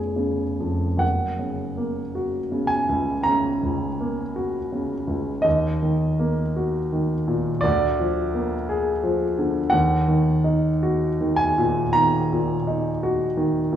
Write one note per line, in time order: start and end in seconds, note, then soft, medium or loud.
0.00 0.98 F1 medium
0.00 0.16 C#3 soft
0.00 1.04 B3 soft
0.00 0.43 G#4 soft
0.00 1.00 C#5 medium
0.16 0.86 C#3 soft
0.60 1.02 F2 soft
0.97 3.20 F#1 soft
0.97 2.69 F#5 medium
1.39 1.99 C#3 soft
1.77 2.37 A#3 soft
2.15 2.74 F#4 soft
2.52 3.11 C#3 soft
2.67 3.25 G#5 medium
2.89 3.49 C#2 soft
3.23 3.86 C#3 soft
3.23 5.44 A#5 medium
3.63 4.22 C#2 soft
4.01 4.58 A#3 soft
4.36 4.94 F#4 soft
4.72 5.30 C#3 soft
5.07 5.45 C#2 soft
5.42 7.60 D#2 medium
5.42 7.63 D#5 medium
5.82 6.42 D#3 soft
6.19 6.78 A#3 soft
6.56 7.14 F#4 soft
6.92 7.50 D#3 soft
7.28 7.64 A#2 medium
7.61 9.69 D2 medium
7.61 9.71 D5 medium
7.99 8.55 F3 soft
8.34 8.90 A#3 soft
8.69 9.24 G#4 medium
9.03 9.59 F3 soft
9.39 9.73 D3 soft
9.70 11.93 D#2 medium
9.70 11.40 F#5 medium
10.08 10.68 D#3 medium
10.44 11.07 D#4 soft
10.83 11.45 F#4 medium
11.21 11.82 D#3 medium
11.36 11.94 G#5 medium
11.58 12.18 A#2 medium
11.93 12.54 D#3 soft
11.93 13.76 A#5 medium
12.33 12.89 A#2 medium
12.67 13.24 D#4 medium
13.03 13.59 F#4 medium
13.37 13.76 D#3 medium
13.73 13.76 A#2 medium